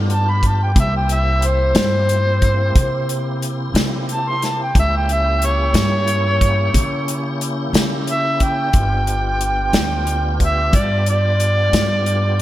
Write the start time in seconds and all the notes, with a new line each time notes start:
Already playing: G2 B3 D4 F4 G4
0.10 A5, closed hi-hat
0.29 B5
0.43 A5, kick, closed hi-hat
0.63 G5
0.75 C2 A#3 C4 E4 G4, kick, closed hi-hat
0.80 E5
0.96 G5
1.09 E5, closed hi-hat
1.42 closed hi-hat
1.47 C5
1.75 G2, snare, closed hi-hat
2.09 closed hi-hat
2.42 kick, closed hi-hat
2.76 C3, kick, closed hi-hat
3.09 closed hi-hat
3.42 closed hi-hat
3.74 C3, snare, closed hi-hat
4.09 A5, closed hi-hat
4.28 C6
4.42 A5, snare, closed hi-hat
4.63 G5
4.75 C#2 A#3 C#4 E4 G4, kick, closed hi-hat
4.79 E5
4.96 G5
5.09 E5, closed hi-hat
5.42 C#5, closed hi-hat
5.74 G2, snare, closed hi-hat
6.08 closed hi-hat
6.41 kick, closed hi-hat
6.74 C#3, kick, closed hi-hat
7.08 closed hi-hat
7.41 closed hi-hat
7.73 C#3, snare, closed hi-hat
8.07 E5, closed hi-hat
8.40 G5, kick, closed hi-hat
8.73 G1 B3 D4 F4 G4, kick, closed hi-hat
9.07 closed hi-hat
9.41 closed hi-hat
9.73 D2, snare, closed hi-hat
10.07 closed hi-hat
10.40 E5, kick, closed hi-hat
10.73 G2 D5, kick, closed hi-hat
11.06 D5, closed hi-hat
11.40 closed hi-hat
11.73 G2, snare, closed hi-hat
12.06 closed hi-hat